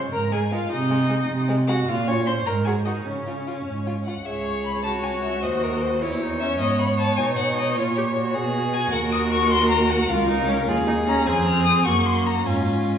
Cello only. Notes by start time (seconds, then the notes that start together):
0.13 G#2
0.71 C3
1.29 C3
1.88 A#2
2.47 G#2
3.06 C#3
3.66 G#2
4.26 C#2
5.43 D#2
6.02 E2
6.60 G#2
7.18 B2
7.76 A#2
8.34 B2
8.92 D#2
10.09 C#2
10.68 D#2
11.26 F2
11.86 F#2
12.46 G#2